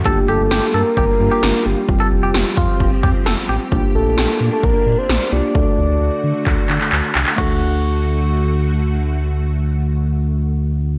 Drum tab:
CC |----------------|----------------|----------------|----------------|
CP |----------------|----------------|----------------|--------x-xxx-xx|
SD |----o-------o---|----o-------o---|----o-------o---|----------------|
BD |o-------o-------|o-----o-o-o-----|o-------o-------|o-------o-------|

CC |x---------------|----------------|
CP |----------------|----------------|
SD |----------------|----------------|
BD |o---------------|----------------|